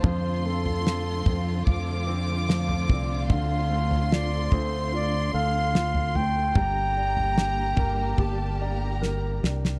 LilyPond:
<<
  \new Staff \with { instrumentName = "Violin section" } { \time 4/4 \key g \minor \tempo 4 = 74 c'''2 d'''2 | c'''1 | bes''2 a''8 bes''4 r8 | }
  \new Staff \with { instrumentName = "Flugelhorn" } { \time 4/4 \key g \minor c''8 a'2 r4 d''8 | f''4 d''8 c''8 d''8 f''4 g''8~ | g''2. r4 | }
  \new Staff \with { instrumentName = "Grand piano" } { \time 4/4 \key g \minor f8 c'8 f8 c'8 f8 c'8 f8 c'8 | d8 a8 f'8 a'8 f'8 a'8 f'8 a8 | g8 d'8 g'8 bes'8 g'8 d''8 bes'8 d'8 | }
  \new Staff \with { instrumentName = "String section" } { \time 4/4 \key g \minor << { <a c' f'>1~ | <a c' f'>1 | <g bes g'>1 | } \\ { d1~ | d1~ | d1 | } >> }
  \new Staff \with { instrumentName = "Fingered electric bass" } { \clef bass \time 4/4 \key g \minor f,4. f,8 f,4. c,8 | d,4. d,4 d,4. | g,,4. g,,8 g,,4. c,8 | }
  \new DrumStaff \with { instrumentName = "Drums" } \drummode { \time 4/4 <bd tomfh>8. tomfh16 sn8 <bd tomfh>8 <bd tomfh>4 sn16 tomfh16 <bd tomfh>8 | <bd tomfh>8. tomfh16 sn8 <bd tomfh>8 r4 sn16 tomfh16 tomfh8 | <bd tomfh>8. tomfh16 sn8 <bd tomfh>8 bd4 sn8 sn16 sn16 | }
>>